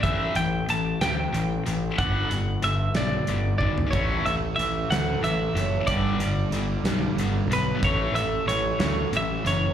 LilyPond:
<<
  \new Staff \with { instrumentName = "Clean electric guitar" } { \time 6/8 \key a \mixolydian \tempo 4. = 62 e''8 g''8 a''8 g''4. | fis''4 e''8 d''4 d''8 | cis''8 e''8 e''8 fis''8 e''4 | d''2~ d''8 b'8 |
cis''8 e''8 cis''4 e''8 cis''8 | }
  \new Staff \with { instrumentName = "Overdriven electric guitar" } { \clef bass \time 6/8 \key a \mixolydian r2. | r2. | a,8 a8 e8 a8 e8 cis'8 | g,8 g8 d8 g8 d8 b8 |
a,8 a8 e8 a8 e8 cis'8 | }
  \new Staff \with { instrumentName = "Distorted electric guitar" } { \clef bass \time 6/8 \key a \mixolydian <a, e a>8 <a, e>8 <a, e>8 <a, e>8 <a, e>8 <a, e>8 | <g, d g>8 <g, d>8 <g, d>8 <g, d>8 <g, d>8 <g, d>8 | <a, e a>8 <a, e>8 <a, e>8 <a, e>8 <a, e>8 <a, e>8 | <g, d g>8 <g, d>8 <g, d>8 <g, d>8 <g, d>8 <g, d>8 |
<a, e a>8 <a, e>8 <a, e>8 <a, e>8 <a, e>8 <a, e>8 | }
  \new Staff \with { instrumentName = "Picked electric bass" } { \clef bass \time 6/8 \key a \mixolydian a,,8 a,,8 a,,8 d,8 a,,8 a,,8 | g,,8 g,,8 g,,8 b,,8 g,,8 gis,,8 | a,,8 a,,8 a,,8 d,8 a,,8 fis,,8 | g,,8 g,,8 g,,8 b,,8 g,,8 b,,8 |
a,,8 a,,8 a,,8 d,8 a,,8 fis,,8 | }
  \new DrumStaff \with { instrumentName = "Drums" } \drummode { \time 6/8 <hh bd>8 hh8 hh8 <hh sn>8 hh8 hh8 | <hh bd>8 hh8 hh8 <hh sn>8 hh8 bd16 tomfh16 | <hh bd>8 hh8 hh8 <hh sn>8 hh8 hh8 | <hh bd>8 hh8 hh8 <hh sn>8 hh8 hh8 |
<hh bd>8 hh8 hh8 <hh sn>8 hh8 hh8 | }
>>